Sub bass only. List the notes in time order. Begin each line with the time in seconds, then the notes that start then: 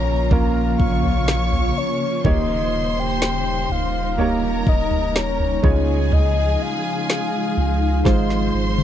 Already playing: A#1
0.80 A#1
2.25 D#1
3.70 D#1
4.67 D#1
5.64 C#2
7.57 C#2
8.05 G#1
8.54 G#1